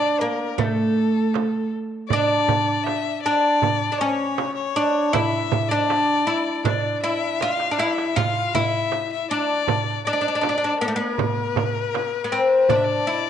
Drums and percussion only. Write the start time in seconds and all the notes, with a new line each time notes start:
0.58 darbuka dum, frame drum
0.77 darbuka ka
1.34 darbuka tek, frame drum
1.53 darbuka ka
2.10 darbuka dum, frame drum
2.29 darbuka ka
2.48 darbuka dum, frame drum
2.69 darbuka ka
2.86 darbuka tek, frame drum
3.62 darbuka dum, frame drum
3.82 darbuka ka
4.38 darbuka tek, frame drum
4.58 darbuka ka
5.14 darbuka dum, frame drum
5.52 frame drum, darbuka dum
5.90 darbuka tek, frame drum
6.46 darbuka ka
6.65 darbuka dum, frame drum
6.84 darbuka ka
7.41 darbuka tek, frame drum
7.60 darbuka ka
7.79 darbuka tek
7.98 darbuka ka
8.17 darbuka dum, frame drum
8.35 darbuka ka
8.55 darbuka dum, frame drum
8.92 darbuka tek, frame drum
9.49 darbuka ka
9.67 darbuka dum, frame drum
10.43 darbuka tek, frame drum
11.01 darbuka ka
11.18 darbuka dum, frame drum
11.37 darbuka ka
11.56 darbuka dum, frame drum
11.75 darbuka ka
11.94 darbuka tek, frame drum
12.51 darbuka ka
12.69 darbuka dum, frame drum